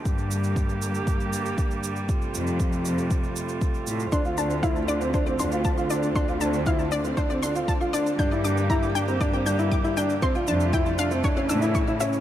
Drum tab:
SH |xxxxxxxxxxxxxxxx|xxxxxxxxxxxxxxxx|xxxxxxxxxxxxxxxx|xxxxxxxxxxxxxxxx|
BD |o---o---o---o---|o---o---o---o---|o---o---o---o---|o---o---o---o---|

SH |xxxxxxxxxxxxxxxx|xxxxxxxxxxxxxxxx|
BD |o---o---o---o---|o---o---o---o---|